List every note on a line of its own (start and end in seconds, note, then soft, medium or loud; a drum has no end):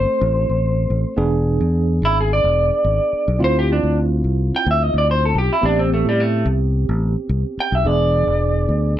0.00 1.13 A3 medium
0.00 1.13 C4 medium
0.00 1.14 A4 medium
0.00 1.15 C5 medium
0.06 muted fingered electric bass stroke soft
0.21 0.47 A1 loud
0.49 0.87 A1 medium
0.90 1.04 A1 medium
1.17 1.57 E1 loud
1.17 3.36 B3 medium
1.17 3.36 D4 medium
1.17 3.36 G#4 medium
1.61 1.99 E2 medium
2.02 2.41 G#1 medium
2.02 2.17 E4 medium
2.21 2.31 G#4 medium
2.33 3.39 D5 medium
2.44 2.70 E1 medium
2.84 2.98 G#1 medium
3.13 muted fingered electric bass stroke soft
3.28 3.40 B1 medium
3.39 3.80 D2 medium
3.39 5.58 C4 medium
3.39 5.58 E4 medium
3.39 5.58 F4 medium
3.44 3.56 C5 medium
3.59 3.70 G4 medium
3.72 3.97 D4 medium
3.83 4.21 D2 medium
4.24 4.50 C2 medium
4.52 muted fingered electric bass stroke soft
4.56 4.68 G5 loud
4.66 4.92 D2 loud
4.71 4.83 E5 loud
4.83 4.95 D#5 medium
4.94 5.32 D2 medium
4.98 5.09 D5 loud
5.11 5.23 C5 loud
5.25 5.36 A4 medium
5.35 5.49 B1 medium
5.35 5.51 G4 loud
5.53 5.64 E4 medium
5.61 6.02 A1 loud
5.61 7.80 B3 medium
5.61 7.81 C4 medium
5.61 7.81 G4 medium
5.65 5.78 D4 loud
5.79 5.91 C4 medium
5.94 6.06 A3 medium
6.05 6.43 A2 medium
6.05 6.20 G3 loud
6.20 6.46 A3 loud
6.46 6.85 C2 loud
6.89 7.15 A1 loud
7.29 7.43 C2 loud
7.58 7.75 G5 loud
7.58 muted fingered electric bass stroke soft
7.72 7.84 B1 medium
7.72 7.87 E5 medium
7.85 8.25 E1 loud
7.85 9.00 B3 medium
7.85 9.00 D4 medium
7.85 9.00 G#4 medium
7.85 8.94 D5 loud
8.27 8.65 E1 medium
8.69 8.94 D2 medium
8.96 muted fingered electric bass stroke soft